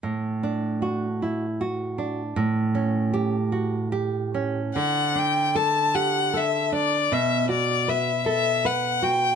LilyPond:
<<
  \new Staff \with { instrumentName = "Violin" } { \time 6/8 \key d \major \tempo 4. = 51 r2. | r2. | fis''8 g''8 a''8 fis''8 e''8 d''8 | e''8 d''8 e''8 e''8 fis''8 g''8 | }
  \new Staff \with { instrumentName = "Nylon-string guitar" } { \time 6/8 \key d \major a,8 d'8 fis'8 e'8 fis'8 d'8 | a,8 cis'8 g'8 fis'8 g'8 cis'8 | d8 d'8 a'8 g'8 a'8 d'8 | b,8 fis'8 b'8 a'8 b'8 fis'8 | }
>>